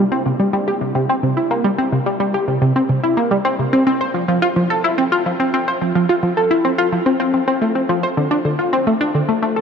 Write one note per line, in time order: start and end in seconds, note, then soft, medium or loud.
0.12 0.22 C4 medium
0.26 0.32 C3 medium
0.40 0.50 G3 medium
0.53 0.67 G3 loud
0.68 0.78 G4 medium
0.81 0.92 C3 medium
0.95 1.05 C3 medium
1.09 1.15 C4 loud
1.23 1.33 C3 medium
1.37 1.50 E4 medium
1.51 1.64 A#3 medium
1.64 1.71 G3 loud
1.78 1.89 C4 medium
1.92 1.99 C3 medium
2.06 2.17 G3 medium
2.20 2.33 G3 medium
2.34 2.44 G4 medium
2.48 2.58 C3 medium
2.62 2.72 C3 loud
2.76 2.82 C4 medium
2.89 3.00 C3 medium
3.04 3.17 E4 medium
3.17 3.30 A#3 medium
3.31 3.37 G3 loud
3.45 3.55 C4 loud
3.59 3.65 C3 medium
3.73 3.83 C4 loud
3.87 4.00 C4 loud
4.01 4.11 C5 medium
4.14 4.25 F3 medium
4.28 4.39 F3 loud
4.42 4.48 F4 loud
4.56 4.67 F3 medium
4.70 4.83 A4 medium
4.84 4.97 E4 medium
4.98 5.04 C4 loud
5.12 5.22 F4 medium
5.26 5.32 F3 medium
5.40 5.50 C4 medium
5.54 5.67 C4 loud
5.68 5.78 C5 medium
5.82 5.92 F3 medium
5.95 6.06 F3 loud
6.09 6.15 F4 loud
6.23 6.33 F3 medium
6.37 6.50 A4 medium
6.51 6.64 E4 loud
6.65 6.71 C4 medium
6.78 6.89 F4 loud
6.92 6.99 F3 medium
7.06 7.16 C4 loud
7.20 7.33 C4 loud
7.34 7.44 C4 medium
7.48 7.58 C4 loud
7.62 7.72 A3 medium
7.75 7.82 C4 medium
7.89 8.03 F3 loud
8.03 8.10 C5 medium
8.17 8.28 D3 medium
8.31 8.37 D4 medium
8.45 8.55 D3 medium
8.59 8.72 F4 medium
8.73 8.86 C4 medium
8.87 8.93 A3 loud
9.01 9.11 D4 loud
9.15 9.21 D3 medium
9.29 9.39 A3 medium
9.42 9.56 A3 loud
9.56 9.61 A4 medium